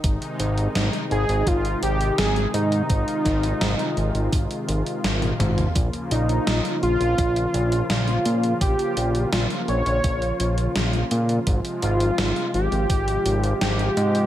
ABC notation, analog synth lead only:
X:1
M:4/4
L:1/8
Q:1/4=84
K:Bbdor
V:1 name="Analog synth lead"
z3 A F G A E- | E6 z2 | z E2 F3 F2 | G2 F d3 z2 |
z F2 G3 G2 |]